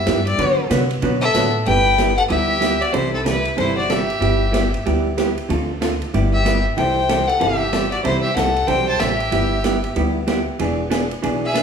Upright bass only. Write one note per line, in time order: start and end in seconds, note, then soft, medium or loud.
0.07 0.38 G2 medium
0.38 0.70 D3 medium
0.70 1.02 C3 loud
1.02 1.33 B2 medium
1.35 1.65 A2 medium
1.67 2.18 G1 medium
2.31 2.82 D2 medium
2.95 3.46 C2 medium
3.58 4.09 G1 medium
4.21 4.72 G1 medium
4.86 5.37 D2 medium
5.49 6.01 D2 medium
6.14 6.65 G1 medium
6.78 7.29 C2 medium
7.41 7.92 G1 medium
8.05 8.30 C2 medium
8.36 8.64 C2 medium
8.68 8.95 B1 medium
9.01 9.28 A1 medium
9.33 9.84 G1 medium
9.96 10.47 D2 medium
10.60 11.11 E1 medium
11.24 11.63 B1 medium